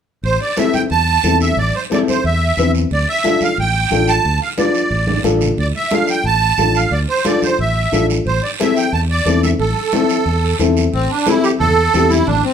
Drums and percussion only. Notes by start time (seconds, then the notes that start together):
0.24 long guiro
0.41 high conga
0.57 high conga, short guiro
0.73 high conga, short guiro
0.90 high conga, long guiro
1.23 high conga, short guiro
1.41 high conga, short guiro
1.57 long guiro
1.75 high conga
1.91 high conga, short guiro
2.08 high conga, short guiro
2.25 high conga, long guiro
2.58 high conga, short guiro
2.75 short guiro
2.91 long guiro
3.08 high conga
3.24 high conga, short guiro
3.41 high conga, short guiro
3.58 high conga, long guiro
3.91 high conga, short guiro
4.08 short guiro
4.25 long guiro
4.41 high conga
4.58 high conga, short guiro
4.74 short guiro
4.91 high conga, long guiro
5.07 high conga
5.24 high conga, short guiro
5.41 low conga, short guiro
5.58 long guiro
5.74 high conga
5.91 high conga, short guiro
6.08 short guiro
6.24 high conga, long guiro
6.58 high conga, short guiro
6.75 short guiro
6.91 long guiro
7.08 high conga
7.25 high conga, short guiro
7.42 high conga, short guiro
7.59 high conga, long guiro
7.93 high conga, short guiro
8.10 short guiro
8.27 long guiro
8.44 high conga
8.60 high conga, short guiro
8.77 short guiro
8.93 high conga, long guiro
9.27 high conga, short guiro
9.43 high conga, short guiro
9.60 long guiro
9.77 high conga
9.93 high conga, short guiro
10.09 short guiro
10.26 high conga, long guiro
10.60 high conga, short guiro
10.77 short guiro
10.94 long guiro
11.10 high conga
11.26 high conga, short guiro
11.44 short guiro
11.61 high conga, low conga, long guiro
11.94 high conga, short guiro
12.11 high conga, short guiro
12.27 low conga, long guiro
12.44 high conga